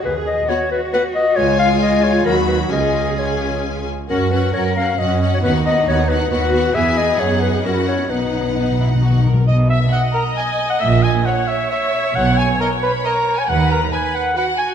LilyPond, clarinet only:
\new Staff \with { instrumentName = "Clarinet" } { \time 3/4 \key b \lydian \tempo 4 = 135 b'8 dis''8 cis''8 b'8 b'8 dis''8 | cis''8 eis''8 dis''8 cis''8 ais'8 b'8 | dis''4 cis''4 r4 | ais'8 b'8 cis''8 eis''8 dis''8. cis''16 |
b'8 dis''8 cis''8 b'8 b'4 | \key b \major e''8 dis''8 cis''8 b'8 ais'8 cis''8 | b'2 r4 | r2. |
r2. | r2. | r2. | }